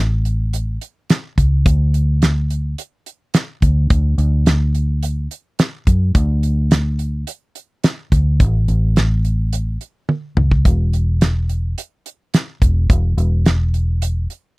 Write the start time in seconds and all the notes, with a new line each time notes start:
Already playing: A1
0.25 closed hi-hat
0.53 closed hi-hat
0.81 closed hi-hat
1.10 snare, closed hi-hat
1.38 C#2, kick, closed hi-hat
1.66 D2, kick, closed hi-hat
1.94 closed hi-hat
2.22 snare, closed hi-hat
2.50 closed hi-hat
2.78 closed hi-hat
3.06 closed hi-hat
3.34 snare, closed hi-hat
3.62 D2, kick, closed hi-hat
3.90 D2, kick, closed hi-hat
4.18 D2, closed hi-hat
4.46 snare, closed hi-hat
4.75 closed hi-hat
5.03 closed hi-hat
5.31 closed hi-hat
5.59 snare, closed hi-hat
5.87 F#2, kick, closed hi-hat
6.15 D2, kick, closed hi-hat
6.43 closed hi-hat
6.71 snare, closed hi-hat
6.99 closed hi-hat
7.27 closed hi-hat
7.55 closed hi-hat
7.84 snare, closed hi-hat
8.12 D2, kick, closed hi-hat
8.40 A1, kick, closed hi-hat
8.68 A1, closed hi-hat
8.96 snare, closed hi-hat
9.25 closed hi-hat
9.53 closed hi-hat
9.81 closed hi-hat
10.09 high tom
10.37 C#2, mid tom
10.51 kick
10.65 E1, kick, closed hi-hat
10.93 closed hi-hat
11.21 snare, closed hi-hat
11.49 closed hi-hat
11.78 closed hi-hat
12.06 closed hi-hat
12.34 snare, closed hi-hat
12.62 E1, kick, closed hi-hat
12.90 E1, kick, closed hi-hat
13.17 E1, closed hi-hat
13.46 snare, closed hi-hat
13.74 closed hi-hat
14.02 closed hi-hat
14.30 closed hi-hat